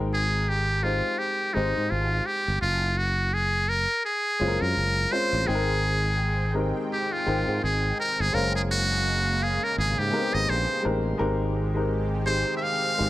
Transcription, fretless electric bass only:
0.00 1.00 G#1 medium
1.57 1.72 G#1 medium
1.77 1.88 G#2 medium
1.92 2.19 G#1 medium
2.48 2.59 G1 medium
2.62 3.85 F#1 loud
4.41 4.57 F#1 medium
4.62 4.73 F#2 medium
4.77 5.05 F#1 medium
5.33 5.44 A1 medium
5.49 6.72 G#1 loud
7.28 7.43 G#1 medium
7.48 7.59 G#2 medium
7.64 7.91 G#1 medium
8.20 8.31 G1 medium
8.34 9.57 F#1 medium
9.78 9.94 G#1 loud
9.99 10.10 G#2 medium
10.35 10.46 G#1 medium
10.50 10.65 A#1 medium
10.86 11.13 A1 medium
11.21 12.43 G#1 medium
13.00 13.10 G#1 medium

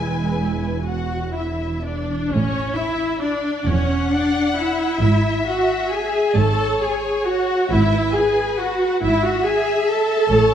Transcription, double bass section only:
0.00 2.07 E1 soft
2.30 3.40 A1 medium
3.65 4.77 E1 medium
5.00 6.10 G#1 medium
6.35 7.45 G#1 medium
7.70 8.78 G#1 medium
9.01 10.07 G#1 medium
10.31 10.54 A1 medium

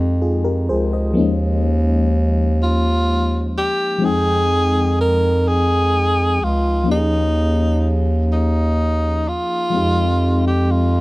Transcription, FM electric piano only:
0.00 1.11 F3 medium
0.00 1.15 G#3 medium
0.00 1.13 C4 medium
0.00 1.13 D#4 medium
0.00 0.19 G4 medium
0.22 0.44 F4 soft
0.22 0.44 G#4 medium
0.44 0.67 G4 soft
0.44 0.67 A#4 medium
0.69 0.92 G#4 medium
0.69 0.91 C5 medium
0.93 1.38 C5 soft
0.93 1.38 D#5 medium
1.13 3.96 F3 medium
1.13 3.97 A#3 medium
1.13 3.98 C#4 medium
1.19 3.99 G#3 medium
1.19 3.99 D#4 medium
3.98 6.82 F3 medium
3.98 6.83 G#3 medium
3.98 6.83 C4 soft
4.03 6.84 D#4 medium
4.03 6.85 G5 medium
6.84 9.67 F3 medium
6.84 9.68 A#3 soft
6.84 9.69 C#4 soft
6.89 9.70 D#4 soft
6.89 6.96 G4 soft
6.97 9.74 G#4 medium
9.70 11.01 F3 medium
9.70 11.01 G#3 medium
9.70 11.01 C4 medium
9.75 11.01 D#4 medium
9.75 11.01 G4 medium

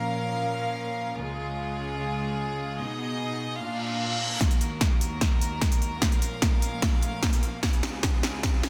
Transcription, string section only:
0.00 1.17 A#2 medium
0.00 1.17 F3 medium
0.00 1.17 C#4 medium
0.00 1.15 A#4 medium
0.00 1.17 F5 medium
1.18 2.78 C#2 medium
1.18 2.78 C#3 medium
1.18 2.78 G#3 medium
1.18 2.78 F4 medium
1.18 3.58 G#4 medium
2.79 3.59 B2 medium
2.79 3.59 B3 medium
2.79 3.59 D#4 medium
2.79 3.59 D#5 medium
3.60 4.40 A#2 medium
3.60 4.40 A#3 medium
3.60 4.40 D4 medium
3.60 4.40 F4 medium
3.60 4.40 F5 medium
4.41 6.00 D#2 medium
4.41 6.00 D#3 medium
4.41 6.00 A#3 medium
4.41 6.00 F#4 medium
4.41 7.60 A#4 medium
6.02 7.61 A#2 medium
6.02 7.61 F3 medium
6.02 7.61 C#4 medium
6.02 7.61 F5 medium
7.63 8.69 C#2 medium
7.63 8.69 C#3 medium
7.63 8.69 G#3 medium
7.63 8.69 F4 medium
7.63 8.69 G#4 medium

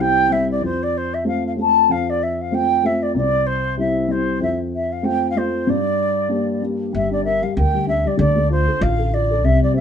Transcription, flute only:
0.01 0.34 G5 loud
0.32 0.50 E5 medium
0.51 0.63 D5 medium
0.65 0.84 C5 medium
0.83 0.99 D5 medium
0.97 1.15 C5 medium
1.14 1.26 E5 medium
1.27 1.43 F5 medium
1.47 1.52 F5 medium
1.61 1.93 A5 medium
1.91 2.11 F5 medium
2.09 2.24 D5 medium
2.23 2.42 E5 medium
2.41 2.56 F5 medium
2.54 2.87 G5 loud
2.86 3.04 E5 medium
3.02 3.15 D5 medium
3.16 3.48 D5 medium
3.46 3.78 C5 medium
3.79 4.13 E5 medium
4.11 4.42 C5 medium
4.42 4.59 E5 medium
4.75 4.93 E5 medium
4.92 5.06 F5 medium
5.04 5.29 G5 medium
5.30 5.39 F5 medium
5.37 5.71 C5 medium
5.69 6.63 D5 medium
6.95 7.11 E5 medium
7.12 7.24 D5 medium
7.24 7.44 E5 medium
7.43 7.56 F5 medium
7.57 7.86 G5 medium
7.88 8.08 E5 medium
8.07 8.18 D5 medium
8.19 8.48 D5 medium
8.51 8.84 C5 medium
8.82 9.15 F5 medium
9.14 9.46 D5 medium
9.44 9.62 E5 medium
9.63 9.75 D5 medium
9.76 9.80 E5 medium

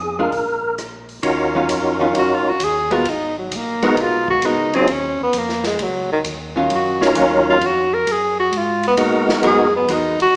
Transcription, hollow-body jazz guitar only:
0.19 0.32 G#3 medium
0.19 0.32 D4 medium
0.19 0.32 F4 medium
1.55 1.68 D#3 medium
1.55 1.68 F#3 medium
1.55 1.69 C#4 medium
1.55 1.69 F4 medium
2.00 2.13 D#3 medium
2.00 2.14 F#3 medium
2.00 2.14 C#4 medium
2.00 2.14 F4 medium
2.91 3.04 G#3 medium
2.91 3.05 B3 medium
2.91 3.05 F#4 medium
2.91 3.05 A#4 medium
3.83 4.40 G#3 medium
3.83 4.41 B3 medium
3.83 4.41 F#4 medium
3.83 4.41 A#4 medium
4.45 4.72 G#3 soft
4.45 4.72 B3 soft
4.45 4.72 F#4 soft
4.45 4.72 A#4 soft
6.56 7.13 D#3 medium
6.56 7.14 F#3 medium
6.56 7.14 C#4 medium
6.56 7.14 F4 medium
7.16 7.44 D#3 medium
7.16 7.44 F#3 medium
7.16 7.44 C#4 medium
7.16 7.45 F4 medium
9.43 9.71 G#3 medium
9.43 9.72 B3 medium
9.43 9.72 F#4 medium
9.43 9.72 A#4 medium
9.89 10.17 G#3 medium
9.89 10.18 B3 medium
9.89 10.18 F#4 medium
9.89 10.18 A#4 medium

